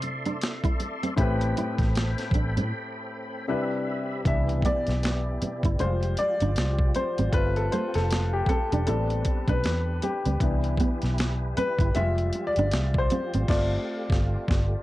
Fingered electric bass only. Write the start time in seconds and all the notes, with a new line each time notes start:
Already playing: C3
1.18 A1
1.79 A1
2.32 A1
2.57 A2
4.26 C2
4.88 B1
5.42 muted fingered electric bass stroke
5.64 G1
5.80 F1
6.42 G1
6.57 C2
7.19 G#1
7.33 G1
7.95 F1
8.73 E1
8.88 A1
9.48 B1
9.65 E2
10.26 C#2
10.41 C2
11.03 B1
11.58 muted fingered electric bass stroke
11.79 G1
11.96 F1
12.57 G1
12.73 C2
13.34 G#1
13.49 G1
14.11 G1
14.49 G1